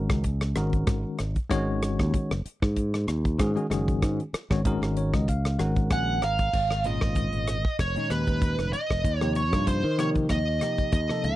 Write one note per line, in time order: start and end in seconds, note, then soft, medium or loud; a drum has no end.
0.00 0.22 D#3 medium
0.00 0.22 G#3 medium
0.00 0.22 C#4 medium
0.00 0.23 F#4 medium
0.00 0.23 A#4 medium
0.09 0.53 C#2 medium
0.09 kick medium
0.09 cross-stick medium
0.09 closed hi-hat soft
0.24 kick medium
0.24 closed hi-hat medium
0.41 cross-stick medium
0.41 closed hi-hat soft
0.55 0.86 G#1 medium
0.55 1.16 D#3 medium
0.55 1.16 G#3 medium
0.55 1.17 C#4 medium
0.55 1.17 F#4 medium
0.55 1.17 A#4 medium
0.55 cross-stick medium
0.55 closed hi-hat medium
0.73 kick medium
0.73 closed hi-hat soft
0.87 1.04 G#1 loud
0.87 kick loud
0.87 cross-stick medium
0.87 closed hi-hat medium
1.18 1.36 G#1 medium
1.18 cross-stick medium
1.18 closed hi-hat soft
1.36 kick medium
1.36 closed hi-hat soft
1.49 1.96 G#1 medium
1.49 2.31 D#3 medium
1.49 2.31 G#3 medium
1.49 2.32 C#4 medium
1.49 2.32 F#4 medium
1.49 2.32 C#5 loud
1.49 kick medium
1.49 cross-stick medium
1.49 closed hi-hat medium
1.82 cross-stick medium
1.82 closed hi-hat medium
1.99 2.13 D#2 medium
1.99 kick medium
1.99 cross-stick medium
1.99 closed hi-hat soft
2.14 muted fingered electric bass stroke soft
2.14 kick medium
2.14 closed hi-hat medium
2.31 2.45 F#1 medium
2.31 cross-stick medium
2.31 closed hi-hat soft
2.45 muted fingered electric bass stroke soft
2.45 closed hi-hat medium
2.62 3.05 G#2 medium
2.62 kick medium
2.62 cross-stick medium
2.76 kick medium
2.76 closed hi-hat medium
2.94 cross-stick medium
2.94 closed hi-hat soft
3.07 3.37 D#2 medium
3.07 cross-stick medium
3.07 closed hi-hat medium
3.25 kick medium
3.25 closed hi-hat soft
3.39 3.56 G#2 medium
3.39 3.50 D#3 medium
3.39 3.50 G#3 medium
3.39 3.50 C#4 medium
3.39 3.51 F#4 medium
3.39 3.51 G#4 medium
3.39 kick loud
3.39 cross-stick medium
3.39 closed hi-hat medium
3.55 3.65 D#3 medium
3.55 3.66 G#3 medium
3.55 3.66 C#4 medium
3.55 3.66 F#4 medium
3.55 3.66 G#4 medium
3.55 closed hi-hat soft
3.70 4.00 F#1 medium
3.70 4.21 D#3 medium
3.70 4.22 G#3 medium
3.70 4.22 C#4 medium
3.70 4.22 F#4 medium
3.70 4.22 G#4 medium
3.70 cross-stick medium
3.70 closed hi-hat medium
3.88 kick medium
3.88 closed hi-hat soft
4.02 4.19 G#2 medium
4.02 kick medium
4.02 cross-stick medium
4.02 closed hi-hat medium
4.20 closed hi-hat soft
4.33 muted fingered electric bass stroke soft
4.33 cross-stick medium
4.33 closed hi-hat medium
4.50 4.80 G#1 medium
4.50 4.60 D#3 medium
4.50 4.60 G#3 medium
4.50 4.60 C#4 medium
4.50 4.60 F#4 medium
4.50 4.61 C#5 medium
4.50 kick medium
4.50 cross-stick medium
4.50 closed hi-hat soft
4.65 5.25 D#3 medium
4.65 5.25 G#3 medium
4.65 5.26 C#4 medium
4.65 5.26 F#4 medium
4.65 5.26 A#4 medium
4.65 kick loud
4.65 closed hi-hat medium
4.82 5.11 G#1 medium
4.82 cross-stick medium
4.82 closed hi-hat soft
4.97 5.13 C#5 medium
4.97 closed hi-hat medium
5.13 5.56 C#2 medium
5.13 5.28 D#5 medium
5.13 kick medium
5.13 cross-stick medium
5.13 closed hi-hat soft
5.28 5.58 F5 medium
5.28 kick medium
5.28 closed hi-hat medium
5.45 cross-stick medium
5.45 closed hi-hat soft
5.58 5.89 G#1 medium
5.58 6.19 D#3 medium
5.58 6.19 G#3 medium
5.58 6.19 C#4 medium
5.58 6.20 F#4 medium
5.58 6.20 A#4 medium
5.58 5.89 F#5 medium
5.58 cross-stick medium
5.58 closed hi-hat medium
5.76 kick medium
5.76 closed hi-hat soft
5.90 6.19 A#1 medium
5.90 6.23 F#5 medium
5.90 6.20 G#5 medium
5.90 kick loud
5.90 cross-stick medium
5.90 closed hi-hat medium
6.22 6.51 G#1 medium
6.22 6.86 F5 medium
6.22 6.52 A#5 soft
6.22 cross-stick medium
6.22 closed hi-hat medium
6.38 kick medium
6.38 closed hi-hat soft
6.53 6.99 G#1 medium
6.53 kick medium
6.53 crash medium
6.70 cross-stick medium
6.70 closed hi-hat soft
6.84 7.55 A#2 medium
6.84 7.55 D#3 medium
6.84 7.56 G#3 medium
6.84 7.56 C#4 medium
6.84 7.56 F4 medium
6.84 7.76 D#5 medium
6.84 closed hi-hat medium
7.01 7.31 G#1 medium
7.01 kick medium
7.01 cross-stick medium
7.15 kick medium
7.15 closed hi-hat medium
7.33 7.62 G#1 medium
7.33 closed hi-hat soft
7.47 cross-stick medium
7.47 closed hi-hat medium
7.65 kick medium
7.79 7.95 F1 medium
7.79 8.11 C#5 medium
7.79 kick medium
7.79 cross-stick medium
7.79 closed hi-hat medium
7.96 8.74 A#2 medium
7.96 8.75 D#3 medium
7.96 8.75 G#3 medium
7.96 8.75 C#4 medium
7.96 8.75 D#4 medium
7.96 closed hi-hat soft
8.10 8.56 D#2 medium
8.10 8.73 B4 medium
8.10 cross-stick medium
8.10 closed hi-hat medium
8.27 kick medium
8.27 closed hi-hat soft
8.42 kick loud
8.42 closed hi-hat medium
8.59 8.72 F1 medium
8.59 cross-stick medium
8.59 closed hi-hat soft
8.73 9.18 D#5 medium
8.73 closed hi-hat medium
8.90 9.04 F1 medium
8.90 kick medium
8.90 cross-stick medium
9.04 9.53 D#2 medium
9.04 kick medium
9.04 closed hi-hat medium
9.18 9.41 C3 medium
9.18 9.41 F3 medium
9.18 9.32 C#5 medium
9.18 cross-stick medium
9.18 closed hi-hat soft
9.22 9.41 A#3 medium
9.22 9.41 D#4 medium
9.22 9.41 G4 medium
9.35 9.65 C#5 medium
9.35 closed hi-hat medium
9.53 9.82 G2 medium
9.53 9.83 C3 medium
9.53 9.83 F3 medium
9.53 9.83 A#3 medium
9.53 9.83 D#4 medium
9.53 9.83 F4 medium
9.53 kick medium
9.53 cross-stick medium
9.53 closed hi-hat soft
9.67 9.97 C5 medium
9.67 kick medium
9.67 closed hi-hat medium
9.84 10.27 D#3 medium
9.98 10.39 C3 medium
9.98 10.39 F3 medium
9.98 10.40 A#3 medium
9.98 10.40 D#4 medium
9.98 10.40 G4 medium
9.98 10.08 C#5 medium
9.98 cross-stick medium
9.98 closed hi-hat medium
10.15 kick medium
10.15 closed hi-hat soft
10.29 10.59 D#2 medium
10.29 10.92 D#5 medium
10.29 kick medium
10.29 cross-stick medium
10.29 closed hi-hat medium
10.61 10.91 C3 medium
10.61 10.92 F3 medium
10.61 10.92 A#3 medium
10.61 10.92 D#4 medium
10.61 10.92 G4 medium
10.61 cross-stick medium
10.61 closed hi-hat medium
10.78 kick medium
10.78 closed hi-hat soft
10.92 11.09 D#2 medium
10.92 11.25 D#5 medium
10.92 kick loud
10.92 closed hi-hat medium
11.09 11.36 C3 medium
11.09 11.36 F3 medium
11.09 11.36 A#3 medium
11.09 11.36 D#4 medium
11.09 11.36 A4 medium
11.09 cross-stick medium
11.24 11.36 C#2 medium
11.24 11.36 F5 medium
11.24 closed hi-hat medium